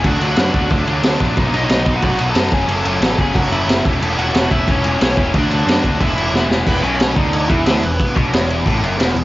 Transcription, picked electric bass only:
0.05 0.17 D2 medium
0.20 0.33 D2 loud
0.38 0.50 F#2 loud
0.54 0.66 D2 medium
0.70 0.83 D2 loud
0.87 1.00 D2 loud
1.03 1.16 D2 medium
1.20 1.33 A#1 medium
1.37 1.50 B1 medium
1.52 1.65 B1 loud
1.70 1.82 B1 medium
1.87 1.99 B1 medium
2.03 2.15 B1 medium
2.20 2.32 B1 medium
2.35 2.48 F#2 medium
2.52 2.65 F#1 medium
2.68 2.81 F#1 loud
2.85 2.98 F#1 loud
3.01 3.14 A1 loud
3.18 3.31 F#1 medium
3.35 3.48 F#1 medium
3.51 3.64 F#1 loud
3.67 3.80 F#1 medium
3.85 3.98 E1 medium
4.01 4.14 E1 loud
4.17 4.30 E1 medium
4.34 4.47 E1 medium
4.52 4.64 E1 medium
4.68 4.80 E1 medium
4.84 4.97 E1 medium
5.01 5.14 B1 medium
5.17 5.30 E1 loud
5.34 5.47 D2 loud
5.50 5.63 D2 loud
5.66 5.79 F#2 medium
5.84 5.97 D2 medium
6.01 6.13 E1 medium
6.15 6.28 E1 loud
6.32 6.45 E1 loud
6.48 6.62 E1 medium
6.67 6.82 E1 loud
6.83 7.14 B1 loud
7.16 7.47 D2 loud
7.50 7.65 E2 medium
7.66 7.81 D2 loud
7.82 7.97 E1 medium
8.17 8.31 B1 loud
8.32 8.63 E1 loud
8.66 8.81 A1 loud
8.81 8.97 F#1 loud
8.98 9.14 E1 loud
9.14 9.24 E1 medium

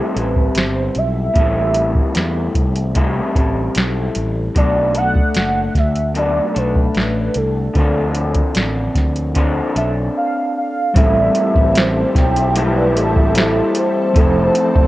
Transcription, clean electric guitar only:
0.00 0.16 A2 medium
0.00 0.16 E3 medium
0.00 0.16 G3 medium
0.00 0.16 C4 medium
0.00 0.15 E4 medium
0.00 0.13 A4 medium
0.15 1.35 G3 soft
0.15 1.36 C4 soft
0.15 1.36 E4 soft
0.15 1.39 A4 soft
1.34 2.93 A2 medium
1.34 2.94 E3 medium
1.34 2.95 G3 medium
1.34 2.95 C4 medium
1.39 2.96 E4 medium
1.39 2.97 A4 medium
2.95 3.35 A2 medium
2.95 3.36 E3 medium
2.95 3.36 G3 medium
2.95 3.36 C4 medium
2.95 3.35 E4 medium
2.95 3.33 A4 medium
3.35 4.56 C4 soft
3.35 4.56 E4 soft
3.35 4.57 A4 medium
3.39 4.56 G3 soft
4.55 4.95 B2 medium
4.55 4.96 F#3 medium
4.55 4.96 A3 medium
4.55 4.96 D4 medium
4.55 4.94 A4 medium
4.95 6.16 D4 soft
4.95 6.17 A4 soft
4.99 6.16 A3 soft
6.15 6.55 B2 medium
6.15 6.56 F#3 medium
6.15 6.56 A3 medium
6.15 6.55 D4 medium
6.15 6.53 A4 medium
6.54 7.78 D4 soft
6.54 7.79 A4 soft
6.58 7.77 A3 soft
7.74 9.33 D3 medium
7.74 9.34 F3 medium
7.74 9.36 C4 medium
7.79 9.35 D4 medium
7.79 9.37 A4 medium
9.35 9.75 D3 medium
9.35 9.76 F3 medium
9.35 9.76 C4 medium
9.35 9.76 D4 medium
9.35 9.73 A4 medium
9.74 10.96 D4 soft
9.74 10.99 A4 medium
9.79 10.96 C4 soft
10.94 12.15 A2 medium
10.94 12.56 E3 medium
10.94 12.16 G3 medium
10.94 12.17 C4 medium
10.94 12.15 E4 medium
12.15 12.55 G3 soft
12.15 12.56 C4 soft
12.15 12.55 E4 medium
12.55 13.35 A2 medium
12.55 13.34 E3 medium
12.55 13.35 G3 medium
12.55 13.37 C4 medium
12.55 13.38 E4 medium
13.35 14.14 E3 soft
13.35 14.16 G3 medium
13.35 14.18 C4 medium
13.35 14.17 E4 medium
14.14 14.87 F3 medium
14.14 14.87 A3 medium
14.19 14.87 C4 medium
14.19 14.87 E4 medium

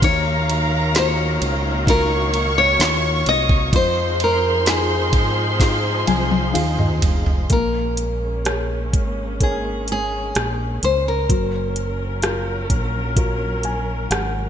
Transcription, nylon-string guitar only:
0.04 0.97 C#5 medium
0.98 1.89 C#5 medium
1.90 2.58 A#4 medium
2.58 3.28 C#5 medium
3.29 3.75 D#5 loud
3.76 4.23 C5 loud
4.24 4.69 A#4 medium
4.69 7.01 G#4 medium
7.53 9.43 A#4 medium
9.43 9.86 G#4 medium
9.92 10.84 G#4 medium
10.84 11.08 C5 medium
11.08 12.90 A#4 medium

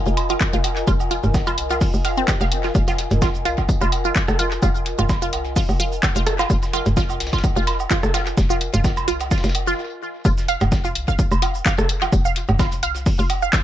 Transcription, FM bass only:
0.06 0.37 F1 medium
0.53 0.84 F1 medium
0.87 1.19 F1 loud
1.24 1.59 F1 medium
1.58 1.89 C2 medium
1.94 2.24 F1 medium
2.41 2.71 F1 medium
2.75 3.07 F1 loud
3.11 3.47 F1 medium
3.45 3.77 C2 medium
3.82 4.12 F1 loud
4.28 4.59 F1 medium
4.63 4.94 F1 loud
4.99 5.34 F1 medium
5.33 5.64 C2 medium
5.69 5.99 F1 medium
6.16 6.46 F1 medium
6.50 6.82 F1 loud
6.86 7.22 F1 medium
7.20 7.52 C2 medium
7.56 7.87 F1 medium
8.03 8.34 F1 medium
8.38 8.69 F1 loud
8.74 9.09 F1 medium
9.08 9.39 C2 medium
9.44 9.74 F1 medium
10.25 10.57 F1 loud
10.61 10.97 F1 medium
10.95 11.27 C2 medium
11.32 11.62 F1 medium
11.78 12.09 F1 medium
12.13 12.44 F1 loud
12.49 12.84 F1 medium
12.83 13.14 C2 medium
13.19 13.49 F1 medium

